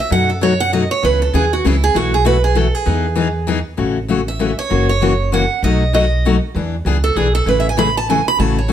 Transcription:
0.00 steel-string acoustic guitar E5
0.10 upright bass F#2, steel-string acoustic guitar B2 F#3 A3 D#4 F#4 F#5
0.30 steel-string acoustic guitar A4
0.41 steel-string acoustic guitar B2 F#3 A3 D#4 F#4 C#5
0.60 steel-string acoustic guitar F#5
0.72 steel-string acoustic guitar B2 F#3 A3 D#4 F#4 D#5
0.91 steel-string acoustic guitar C#5
1.02 upright bass C#2, steel-string acoustic guitar C#3 E3 B3 C#4 G#4 B4
1.22 steel-string acoustic guitar A4
1.33 upright bass D#2, steel-string acoustic guitar C#3 E3 B3 C#4 G#4
1.53 steel-string acoustic guitar F#4
1.65 upright bass C#2, steel-string acoustic guitar C#3 E3 B3 C#4 E4 G#4
1.84 steel-string acoustic guitar G#4
1.94 upright bass B1, steel-string acoustic guitar B2 E3 A3 E4 F#4
2.14 steel-string acoustic guitar G#4
2.25 steel-string acoustic guitar B2 E3 A3 E4 F#4 B4
2.44 steel-string acoustic guitar G#4
2.55 steel-string acoustic guitar B2 E3 A3 E4 F#4 A4
2.75 steel-string acoustic guitar G#4
2.86 upright bass E2, steel-string acoustic guitar E3 B3 D#4 G#4
3.15 steel-string acoustic guitar E3 B3 D#4 G#4
3.47 steel-string acoustic guitar E3 B3 D#4 G#4
3.77 upright bass A1, steel-string acoustic guitar C#3 E3 A3 C#4 F#4
4.08 steel-string acoustic guitar C#3 E3 A3 C#4 F#4
4.28 steel-string acoustic guitar E5
4.39 steel-string acoustic guitar C#3 E3 A3 C#4 F#4
4.59 steel-string acoustic guitar C#5
4.70 upright bass F#1, steel-string acoustic guitar C#3 E3 A#3 C#4 F#4
4.89 steel-string acoustic guitar C#5
5.01 steel-string acoustic guitar C#3 E3 A#3 C#4 F#4
5.32 steel-string acoustic guitar C#3 E3 A#3 C#4 F#4 F#5
5.62 upright bass B1, steel-string acoustic guitar B2 F#3 A3 D#4 F#4 D#5
5.93 steel-string acoustic guitar B2 F#3 A3 D#4 F#4 D#5
6.25 steel-string acoustic guitar B2 F#3 A3 D#4 F#4
6.55 upright bass E2, steel-string acoustic guitar E3 B3 D4 G#4
6.85 upright bass C#2, steel-string acoustic guitar E3 B3 D4 G#4
7.04 steel-string acoustic guitar A4
7.15 upright bass B1, steel-string acoustic guitar E3 B3 D4 G#4
7.35 steel-string acoustic guitar A4
7.46 upright bass A1, steel-string acoustic guitar C#3 E3 A3 C#4 G#4 B4
7.60 steel-string acoustic guitar E5
7.69 steel-string acoustic guitar G#5
7.77 steel-string acoustic guitar C#3 E3 A3 C#4 G#4 B5
7.97 steel-string acoustic guitar A5
8.09 steel-string acoustic guitar C#3 E3 A3 C#4 G#4 G#5
8.28 steel-string acoustic guitar B5
8.38 upright bass A1, steel-string acoustic guitar C#3 E3 A3 C#4 F#4 A5
8.58 steel-string acoustic guitar C#5
8.68 steel-string acoustic guitar C#3 E3 A3 C#4

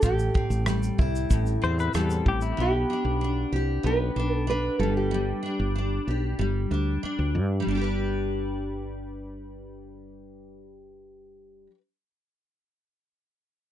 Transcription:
Already playing: steel-string acoustic guitar G3 G4
0.02 fretless electric bass A1, steel-string acoustic guitar A2, nylon-string guitar G4, kick, shaker
0.19 shaker
0.34 steel-string acoustic guitar C4, kick
0.50 fretless electric bass A1, shaker
0.66 steel-string acoustic guitar G3, cross-stick, shaker
0.83 shaker
0.98 fretless electric bass C2, steel-string acoustic guitar E4, kick
1.15 shaker
1.30 fretless electric bass A1, steel-string acoustic guitar A2, kick, shaker
1.46 shaker
1.62 fretless electric bass E2, steel-string acoustic guitar C4, pedal steel guitar C5
1.79 pedal steel guitar B4, shaker
1.94 fretless electric bass E2, steel-string acoustic guitar G3, pedal steel guitar A4, cross-stick, shaker
2.10 shaker
2.26 fretless electric bass A1, pedal steel guitar G4, kick
2.41 pedal steel guitar E4, shaker
2.57 fretless electric bass B1, steel-string acoustic guitar B3, nylon-string guitar G4
2.90 steel-string acoustic guitar D4
3.05 fretless electric bass B1
3.21 steel-string acoustic guitar D4
3.52 fretless electric bass C2, steel-string acoustic guitar G4
3.83 fretless electric bass B1, steel-string acoustic guitar B3, nylon-string guitar B4
4.16 fretless electric bass B1, steel-string acoustic guitar D4
4.35 nylon-string guitar A4
4.47 steel-string acoustic guitar D4, nylon-string guitar B4
4.79 fretless electric bass G1, steel-string acoustic guitar G3, nylon-string guitar A4
4.97 nylon-string guitar G4
5.11 steel-string acoustic guitar G3
5.43 steel-string acoustic guitar D4
5.59 fretless electric bass G1
5.76 steel-string acoustic guitar D4
6.07 fretless electric bass B1, steel-string acoustic guitar G4
6.39 fretless electric bass G1, steel-string acoustic guitar G3
6.71 fretless electric bass D2, steel-string acoustic guitar D4
7.03 steel-string acoustic guitar D4, muted fretless electric bass stroke
7.19 fretless electric bass D2
7.35 fretless electric bass G2
7.60 steel-string acoustic guitar G3
7.67 fretless electric bass G1, steel-string acoustic guitar D4
7.75 steel-string acoustic guitar G4
7.81 steel-string acoustic guitar B4

